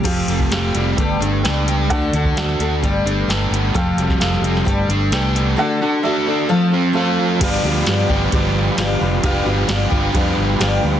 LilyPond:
<<
  \new Staff \with { instrumentName = "Upright piano" } { \time 4/4 \key g \mixolydian \tempo 4 = 131 <g' a' f''>4 <g' a' f''>4 <a' b' g''>4 <a' b' g''>4 | <a' d'' fis''>4 <a' d'' fis''>4 <a' b' g''>4 <a' b' g''>4 | <a' f'' g''>4 <a' f'' a''>4 <a' b' g''>4 <a' b' g''>4 | <a' d'' fis''>4 <a' d'' e''>4 <a' c'' f''>4 <a' c'' f''>4 |
<g' b' f''>8 <g' b' f''>8 <g' b' f''>4 <g' b' d''>4 <g' b' f''>4 | <g' b' f''>8 <g' b' f''>8 <g' b' f''>4 <g' b' f''>4 <g' b' f''>4 | }
  \new Staff \with { instrumentName = "Tonewheel organ" } { \time 4/4 \key g \mixolydian <f' g' a'>2 <b g' a'>2 | <d' fis' a'>2 <b g' a'>2 | <f' g' a'>2 <b g' a'>2 | <d' fis' a'>2 <c' f' a'>2 |
<f' g' b'>1~ | <f' g' b'>1 | }
  \new Staff \with { instrumentName = "Steel-string acoustic guitar" } { \time 4/4 \key g \mixolydian <f a c' f' g'>8 <c' f' g'>8 <a c' f' g'>8 <c' f' g'>8 <g, d a b d' g'>8 <a b d' g'>8 <a b d' g'>4 | <d a d' fis' a'>8 <d' fis' a'>8 <a d' fis' a'>8 <d' fis' a'>8 <g, d a b d' g'>8 <a b d' g'>8 <a b d' g'>4 | <f a c' f' g'>8 <c' f' g'>8 <a c' f' g'>8 <c' f' g'>8 <g, d a b d' g'>8 <a b d' g'>8 <a b d' g'>4 | <d a d' fis' a'>8 <d' fis' a'>8 <a d' fis' a'>8 <d' fis' a'>8 <f a c' f' a'>8 <c' f' a'>8 <a c' f' a'>4 |
<g, g b d' f' g'>8 <b d' f' g'>8 <g, g b d' f' g'>8 <b d' f' g'>8 <b d' f' g'>4 <g, g b d' f' g'>8 <b d' f' g'>8 | <g, g b d' f' g'>8 <b d' f' g'>8 <g, g b d' f' g'>8 <b d' f' g'>8 <b d' f' g'>4 <g, g b d' f' g'>8 <b d' f' g'>8 | }
  \new Staff \with { instrumentName = "Overdriven electric guitar" } { \clef bass \time 4/4 \key g \mixolydian f8 a8 g'8 g8 g8 d'8 b'8 g'8 | d8 d8 fis'8 d'8 g8 d'8 a'8 b8 | f8 g8 f'8 c'8 g8 d'8 a'8 b8 | d8 d8 fis'8 d'8 f8 c'8 a'8 f'8 |
<g, d f g b g'>4. <g, d f g b g'>2~ <g, d f g b g'>8 | <g, d f g b g'>4. <g, d f g b g'>2~ <g, d f g b g'>8 | }
  \new Staff \with { instrumentName = "Fingered electric bass" } { \clef bass \time 4/4 \key g \mixolydian f,,8 f,,8 f,,8 f,,8 g,,8 g,,8 cis,4 | d,8 d,8 d,8 d,8 g,,8 g,,8 g,,8 g,,8 | f,,8 f,,8 f,,8 f,,8 g,,8 g,,8 c,4 | r1 |
g,,8 d,8 g,8 g,,8 g,,4 g,,8 f,,8 | f,,8 g,,8 r8 g,,8 f,8 g,,8 g,,8 d,8 | }
  \new DrumStaff \with { instrumentName = "Drums" } \drummode { \time 4/4 <cymc hh bd>8 hh16 bd16 <hh sn>8 hh8 <hh bd>8 hh8 <hh sn>8 hh8 | <hh bd>8 hh16 bd16 <hh sn>16 sn16 hh8 <hh bd>8 hh8 <hh sn>8 hh8 | <hh bd>8 hh16 <bd sn>16 <hh sn>16 sn16 hh16 sn16 <hh bd>8 hh8 <hh sn>8 hh8 | r4 r4 r4 r4 |
<cymc bd cymr>4 <cymr sn>8 bd8 <bd cymr>4 <cymr sn>4 | <bd cymr>4 <cymr sn>8 bd8 <bd cymr>4 <cymr sn>4 | }
>>